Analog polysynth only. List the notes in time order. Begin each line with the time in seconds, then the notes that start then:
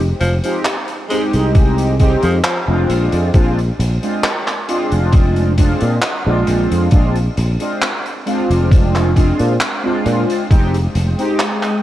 0.44 G#3 C4 D#4 G4
1.10 G#3 C4 D#4 G4
1.99 G#3 C4 D#4 G4
2.67 G#3 C4 D4 F4
3.33 G#3 C4 D4 F4
4.02 G#3 C4 D4 F4
4.68 G#3 C4 D4 F4
5.57 G#3 C4 D4 F4
6.26 G#3 C4 D4 F4
6.91 G#3 C4 D4 F4
7.60 G#3 C4 D4 F4
8.26 G#3 C4 D4 F4
9.16 G#3 C4 D4 F4
9.83 G#3 C4 D4 F4
10.49 G#3 C4 D#4 G4
11.18 G#3 C4 D#4 G4